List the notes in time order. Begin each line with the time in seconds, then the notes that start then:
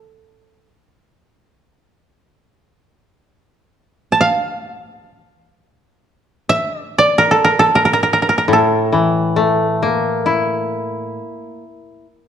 Already playing: A4
4.12 A5
4.21 F5
6.49 E5
6.78 D5
6.98 D5
7.18 A#4
7.31 A4
7.44 A#4
7.59 A4
7.75 A#4
7.85 A#4
7.93 A#4
8.03 A#4
8.13 A#4
8.22 A#4
8.29 A#4
8.38 A#4
8.48 A2
8.53 A4
8.92 E3
9.36 A3
9.82 A#3
10.26 E4